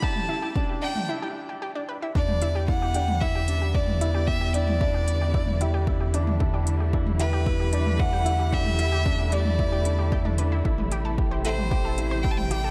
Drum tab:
HH |----------------|--x---x---x---x-|--x---x---x---x-|--x---x---x---x-|
T2 |-o-----o--------|-o-----o-----o--|---o-----o-----o|-----o-----o----|
BD |o---o-----------|o---o---o---o---|o---o---o---o---|o---o---o---o---|

HH |--x---x---x---x-|--x---x---x---x-|
T2 |-o-----o-----o--|-o-----o-----o--|
BD |o---o---o---o---|o---o---o---o---|